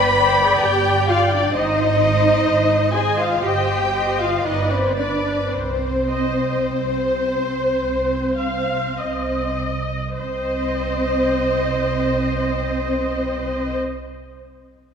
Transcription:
Already playing: G1 B4 D5 G5 B5
0.18 D5 G5
0.27 C5
0.35 B4
0.44 G#4
0.54 B4
0.62 G1 G4 G5
1.08 F4 D5 F5 G5
1.32 D4 D5
1.54 G#1 D#4 C5 D#5
2.01 C5 D#5
2.47 G#1
2.94 G#4 C5 D#5 G#5
3.19 F4 F5
3.43 G1 G4 C5 D#5 G5
3.94 C5 D#5
4.19 F4 F5
4.45 G1 D#4 B4 D5 D#5
4.71 C4 C5
4.98 D4 B4 D5
5.53 C2 C4 C5
6.09 C5 D#5
6.66 C2 C5
7.81 C2
8.38 F5
8.98 C2 D#5
10.19 C2 C4 C5 D#5

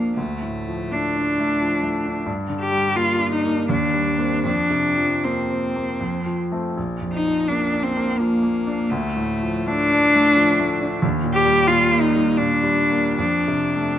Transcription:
Already playing: A#1 F2 F3 A#3 D4
0.16 D2 A3
0.42 A2
0.68 F3
0.92 A3 D4
1.16 D4
1.40 A3
1.61 F3
1.83 A3
2.05 D4
2.26 G2
2.49 D3
2.60 G4
2.72 G3
2.95 A#3 F4
3.19 D4
3.32 D#4
3.45 A#3
3.69 D#2 D4
3.93 G3
4.18 A#3 C4
4.44 F2 D4
4.70 C3
4.97 F3
5.24 A#3 C4
5.50 C4
5.76 A#3
6.01 F2
6.26 F3
6.52 A3 C4
6.77 A#1
7.01 F2
7.12 D#4
7.26 F3
7.48 A#3 D4
7.73 D4
7.83 C4
7.97 A#3
8.19 F3 A#3
8.43 A#3
8.67 D4
8.90 D2 A3
9.16 A2
9.43 F3
9.66 A3 D4
9.92 D4
10.15 A3
10.36 F3
10.60 A3
10.81 D4
11.02 D#2
11.23 A#2
11.34 G4
11.45 G3
11.67 A#2 F4
11.91 A#3
12.01 D#4
12.14 G3
12.37 A#2 D4
12.63 G3
12.91 A#3
13.17 F2 D4
13.48 C3
13.76 A3

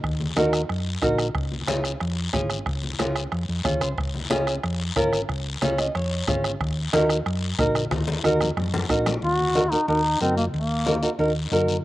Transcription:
0.04 D#2, bombo low, bombo rim, high conga, long guiro
0.20 high conga
0.36 D#2 D#4 F#4 A#4, bombo rim, high conga, short guiro
0.53 bombo rim, short guiro
0.69 F#2, bombo rim, high conga, long guiro
1.02 A#1 D#4 F#4 A#4, bombo low, bombo rim, high conga, short guiro
1.18 bombo rim, short guiro
1.35 C#2, bombo low, bombo rim, high conga, long guiro
1.52 high conga
1.68 C#2 C#4 F4 G#4, bombo rim, high conga, short guiro
1.84 bombo rim, short guiro
2.00 F2, bombo rim, high conga, long guiro
2.33 G#1 C#4 F4 G#4, bombo low, bombo rim, high conga, short guiro
2.50 bombo rim, short guiro
2.66 C#2, bombo low, bombo rim, high conga, long guiro
2.83 high conga
2.99 C#2 C#4 F4 G#4, bombo rim, high conga, short guiro
3.16 bombo rim, short guiro
3.32 F2, bombo rim, high conga, long guiro
3.49 F2
3.64 D#2 C#4 F4 G#4, bombo low, bombo rim, high conga, short guiro
3.81 C#2 C5, bombo rim, short guiro
3.98 C#2, bombo low, bombo rim, high conga, long guiro
4.15 high conga
4.30 C#2 C#4 F4 G#4, bombo rim, high conga, short guiro
4.47 bombo rim, short guiro
4.63 F2, bombo rim, high conga, long guiro
4.96 G#1 C#4 F4 A#4, bombo low, bombo rim, high conga, short guiro
5.13 bombo rim, short guiro
5.29 C#2, bombo low, bombo rim, high conga, long guiro
5.62 C#2 C#4 F4 G#4, bombo rim, high conga, short guiro
5.78 D#5, bombo rim, short guiro
5.95 F2 C#5, bombo rim, high conga, long guiro
6.27 G#1 C#4 F4 G#4, bombo low, bombo rim, high conga, short guiro
6.44 bombo rim, short guiro
6.61 D#2, bombo low, bombo rim, high conga, long guiro
6.93 D#2 D#4 F#4 A#4, bombo rim, high conga, short guiro
7.09 bombo rim, short guiro
7.26 F#2, bombo rim, high conga, long guiro
7.58 A#1 D#4 F#4 A#4, bombo low, bombo rim, high conga, short guiro
7.75 bombo rim, high conga, short guiro
7.91 D#2, bombo low, bombo rim, high conga, long guiro
8.08 high conga
8.24 D#2 D#4 F#4 A#4, bombo rim, high conga, short guiro
8.41 bombo rim, low conga, short guiro
8.57 F#2, bombo rim, low conga, long guiro
8.74 low conga
8.89 A#1 D#4 F#4 A#4, bombo low, bombo rim, short guiro
9.06 bombo rim, low conga, short guiro
9.22 D#2 F#4, high conga, long guiro
9.39 high conga
9.55 D#4 F#4 A#4, high conga, short guiro
9.71 D#4 F#4 A#4, short guiro
9.88 D#2 D#4 F#4 A#4, high conga, long guiro
10.21 F#2 C4 D#4 F#4 A#4, high conga, short guiro
10.37 A#3, high conga, short guiro
10.53 D#2 A#3, high conga, long guiro
10.86 D#4 F#4 A#4, high conga, short guiro
11.02 D#4 F#4 A#4, short guiro
11.19 D#2 D#4 F#4 A#4, high conga, long guiro
11.52 F#2 D#4 F#4 A#4, high conga, short guiro
11.68 high conga, short guiro

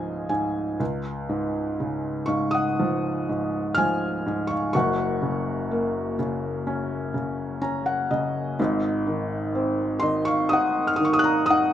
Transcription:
Already playing: C#2 G#2 F3 C#5 D#5 F5 G#5
0.29 G#2 G#5
0.80 C#2
1.29 G#2
1.80 C#3
2.26 G#2 F5 C#6
2.51 F#5 D#6
2.79 F3
3.29 G#2
3.75 F3 G#5 F6
4.26 G#2
4.47 F5 C#6
4.73 F#1 F#2 F#5 C#6
5.22 C#3
5.71 A#3
6.19 C#3
6.67 C#4
7.14 C#3
7.62 C#4 A#5
7.86 F#5
8.11 C#3 D#5
8.59 G#1 G#2
9.07 D#3
9.55 C4
10.00 D#3 D#5 C6
10.25 F5 C#6
10.49 D#4 D#6
10.53 F#5
10.87 F6
10.96 D#3 D#6
11.05 C#6
11.13 D#6
11.19 F#6
11.24 A#5
11.46 D#4 D#6
11.50 F#5

